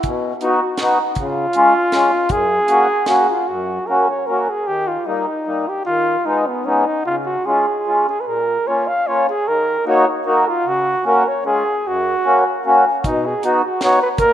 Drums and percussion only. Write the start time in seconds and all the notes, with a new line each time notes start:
0.03 kick, closed hi-hat
0.41 closed hi-hat
0.78 snare, closed hi-hat
1.15 kick, closed hi-hat
1.53 closed hi-hat
1.92 snare, closed hi-hat
2.29 kick, closed hi-hat
2.68 closed hi-hat
3.06 snare, closed hi-hat
13.04 kick, closed hi-hat
13.43 closed hi-hat
13.81 snare, closed hi-hat
14.18 kick, closed hi-hat